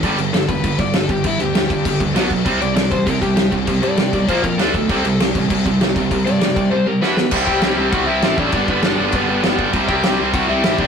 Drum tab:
CC |xxxxxxxx|xxxxxxxx|xxxxxxxx|xxxxxxxx|
SD |--o---o-|--o---o-|--o---o-|--o---o-|
BD |o--ooo-o|o--ooo-o|o--ooo-o|o--ooo-o|

CC |xxxxxxxx|xxxx----|x-x-x-x-|x-x-x-x-|
SD |--o---o-|--o---oo|--o---o-|--o---o-|
BD |o--ooo-o|o--o----|oo--o--o|oo--o--o|

CC |x-x-x-x-|
SD |--o---o-|
BD |oo--o--o|